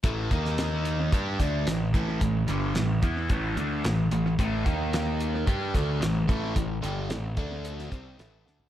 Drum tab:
HH |x-x-x-x-x-x-x-x-|x-x-x-x-x-x-x-x-|x-x-x-x-x-x-x-x-|x-x-x-x-x-x-x---|
SD |---oo-------o---|----o-------o---|----o-----o-o---|----o----o--o-o-|
FT |----------------|----------------|----------------|---------------o|
BD |o-o-----o-o---o-|o-----o-o-------|o-o-----o-o---o-|o-----o---o-----|